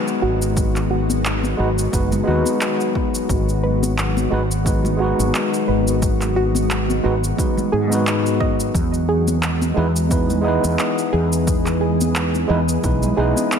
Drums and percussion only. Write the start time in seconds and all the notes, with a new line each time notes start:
0.08 shaker
0.42 shaker
0.57 kick, shaker
0.76 clap, shaker
1.10 high conga, shaker
1.25 clap, shaker
1.43 high conga, shaker
1.78 shaker
1.93 kick, shaker
2.12 low conga, shaker
2.45 high conga, shaker
2.61 clap, shaker
2.80 shaker
2.95 kick
3.15 shaker
3.29 kick, shaker
3.49 shaker
3.83 high conga, shaker
3.98 clap, shaker
4.17 high conga, shaker
4.51 shaker
4.66 kick, shaker
4.85 low conga, shaker
5.19 high conga, shaker
5.35 clap, shaker
5.54 shaker
5.88 shaker
6.02 kick, shaker
6.21 clap, shaker
6.55 high conga, shaker
6.71 clap, shaker
6.90 high conga, shaker
7.24 shaker
7.38 kick, shaker
7.58 low conga, shaker
7.92 high conga, shaker
8.07 clap, shaker
8.26 shaker
8.41 kick
8.60 shaker
8.75 kick, shaker
8.94 shaker
9.28 high conga, shaker
9.43 clap, shaker
9.61 high conga, shaker
9.96 shaker
10.11 kick, shaker
10.30 low conga, shaker
10.64 high conga, shaker
10.79 clap, shaker
10.98 shaker
11.32 shaker
11.47 kick, shaker
11.66 clap, shaker
12.01 high conga, shaker
12.15 clap, shaker
12.35 high conga, shaker
12.69 shaker
12.84 kick, shaker
13.03 low conga, shaker
13.36 high conga, shaker
13.52 clap, shaker